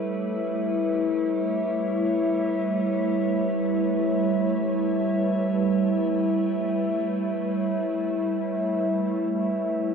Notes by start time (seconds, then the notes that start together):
Already playing: G3 A3 E4 A4 B4 C#5 E5